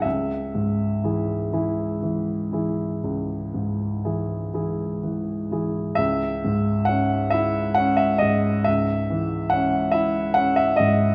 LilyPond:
<<
  \new Staff \with { instrumentName = "Grand piano" } { \time 12/8 \key cis \minor \tempo 4. = 43 e''1~ e''8 r4. | e''4 fis''8 e''8 fis''16 e''16 dis''8 e''4 fis''8 e''8 fis''16 e''16 dis''8 | }
  \new Staff \with { instrumentName = "Grand piano" } { \clef bass \time 12/8 \key cis \minor cis,8 gis,8 <e e' gis'>8 <e e' gis'>8 e8 <e e' gis'>8 cis,8 gis,8 <e e' gis'>8 <e e' gis'>8 e8 <e e' gis'>8 | cis,8 gis,8 cis'8 e'8 cis'8 gis,8 cis,8 e8 cis'8 e'8 cis'8 gis,8 | }
>>